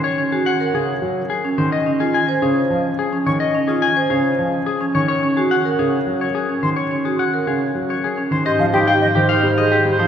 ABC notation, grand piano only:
X:1
M:3/4
L:1/16
Q:1/4=107
K:Abmix
V:1 name="Grand piano" clef=bass
z4 z D, z G, z3 E, | z4 z D, z F, z3 E, | z4 z D, z F, z3 E, | z4 z D, z G, z3 E, |
z4 z D, z G, z3 E, | [K:Ab] z F, G, z2 E, z G, z2 G, F, |]